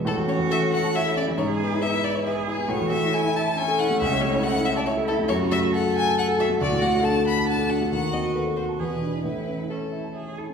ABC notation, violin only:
X:1
M:3/4
L:1/16
Q:1/4=138
K:A
V:1 name="Violin"
A2 c2 e2 f2 e2 d2 | c2 B2 e2 d c B2 G2 | c2 e2 g2 a2 g2 f2 | e2 c2 f2 e d c2 A2 |
c2 e2 f2 g2 f2 e2 | d2 f2 a2 b2 a2 f2 | f2 ^d2 B2 ^B2 =B4 | B4 A4 z4 |]